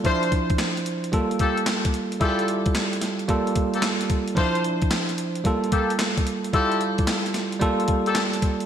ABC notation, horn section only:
X:1
M:4/4
L:1/16
Q:"Swing 16ths" 1/4=111
K:Gdor
V:1 name="Horn section"
[DEFc]2 z8 [B,FGA] z4 z | [EFGA]2 z8 z [B,FGA] z4 | [DEFc]2 z8 [B,FGA] z4 z | [EFGA]2 z8 z [B,FGA] z4 |]